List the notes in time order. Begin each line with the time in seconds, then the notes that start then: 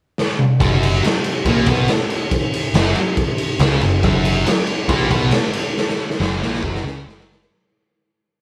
0.18 snare
0.39 mid tom
0.60 F#1 F#2 F#3, kick, ride
0.83 ride
1.03 muted picked electric bass stroke, muted distorted electric guitar stroke, snare, ride
1.24 ride
1.45 A#1 A#2 A#3, kick, ride
1.66 B1 B2 B3, kick, ride
1.88 snare, ride
2.10 ride
2.31 kick, ride
2.54 ride
2.74 F#1 F#2 F#3, snare, ride
2.95 muted distorted electric guitar stroke, ride
3.17 kick, ride
3.38 ride
3.59 C#2 C#3 C#4, snare, ride
3.81 F#1 F#2, ride
4.03 F#1 F#2 F#3, kick, ride
4.25 ride
4.46 muted distorted electric guitar stroke, muted picked electric bass stroke, snare, ride
4.67 ride
4.88 A#1 A#2 A#3, kick, ride
5.11 B1 B2 B3, kick, ride
5.31 snare, ride
5.53 ride
5.77 snare
5.89 snare
6.10 snare
6.20 F#1 F#2 F#3, snare
6.40 A#1 A#2 A#3, snare
6.54 snare
6.63 F#1 F#2 F#3, kick
6.75 snare
6.83 C#2 C#3 C#4, snare
7.05 F#1 F#2 F#3
7.09 snare
7.20 snare
7.32 snare
7.42 snare